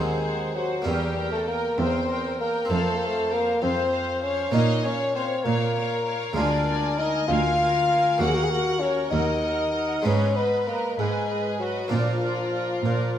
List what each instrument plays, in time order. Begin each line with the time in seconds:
Already playing: cello section D#2, harpsichord D#2 C4 D#4, bassoon G#3, violin section G#4 F#5, viola section C5
0.24 viola section C5, violin section F#5
0.55 bassoon F#3, violin section F#4 F#5, viola section C5
0.82 cello section E2, harpsichord E2 A#3 C#4, bassoon G3, viola section A#4
0.86 violin section G4 G5
1.15 viola section A#4, violin section G5
1.32 bassoon A3, violin section A4
1.46 bassoon A#3, viola section A#4, violin section A#4 G5
1.77 cello section E2, harpsichord E2, bassoon C4, viola section A#4, violin section C5 G5
2.09 viola section A#4, violin section G5
2.38 bassoon A#3, viola section A#4, violin section A#4 G5
2.65 harpsichord C4
2.70 cello section F2, harpsichord F2, bassoon A3, violin section A4 F5, viola section C5
2.81 bassoon A#3
2.89 bassoon A3
2.96 bassoon A#3, violin section F5
3.01 viola section C5
3.05 bassoon A3
3.31 bassoon A#3, violin section A#4 F5, viola section C5
3.61 harpsichord F2, cello section F2, bassoon C4, viola section C5, violin section C5 F5
3.91 viola section C5, violin section F5
4.23 bassoon C#4, viola section C5, violin section C#5 F5
4.51 harpsichord A#2 A#3 C#4, cello section A#2, bassoon D#4, viola section C#5, violin section D#5 F5
4.84 bassoon C#4, viola section C#5, violin section C#5 F5
5.15 bassoon C4, violin section C5 F5, viola section C#5
5.44 cello section A#2, harpsichord A#2, bassoon A#3, violin section A#4 F5, viola section C#5
5.75 viola section C#5, violin section F5
6.05 viola section C#5, violin section F5
6.33 cello section D2, harpsichord G#3 A#3 F4, bassoon D4, viola section A#4, violin section G#5
6.38 harpsichord D2, violin section D5
6.66 viola section A#4, violin section G#5
6.97 bassoon D#4, viola section A#4, violin section D#5 G#5
7.28 cello section D2, harpsichord D2, bassoon F4, viola section A#4, violin section F5 G#5
7.58 viola section A#4, violin section G#5
7.89 viola section A#4, violin section G#5
8.18 cello section D#2, harpsichord D#2 A#3 F#4, bassoon F#4, viola section A#4, violin section F#5
8.28 bassoon G#4
8.35 bassoon F#4
8.44 bassoon G#4
8.50 bassoon F#4, viola section A#4, violin section F#5
8.80 bassoon C#4, viola section A#4, violin section C#5 F#5
9.11 harpsichord D#2, cello section D#2, bassoon D#4, viola section A#4, violin section D#5 F#5
9.42 viola section A#4, violin section F#5
9.73 viola section A#4, violin section F#5
10.02 cello section G#2, harpsichord G#3 B3 D#4, bassoon C#4, viola section B4, violin section C#5 D#5
10.06 harpsichord G#2
10.35 bassoon B3, violin section B4 D#5, viola section B4
10.66 bassoon A#3, violin section A#4 D#5, viola section B4
10.97 cello section G#2, harpsichord G#2, bassoon G#3, violin section G#4 D#5, viola section B4
11.28 viola section B4, violin section D#5
11.60 bassoon F#3, violin section F#4 D#5, viola section B4
11.88 cello section A#2, harpsichord A#2 A#3 D4, bassoon F3, violin section F4 D5, viola section A#4
12.22 viola section A#4, violin section D5
12.53 viola section A#4, violin section D5
12.84 cello section A#2, harpsichord A#2, viola section A#4, violin section D5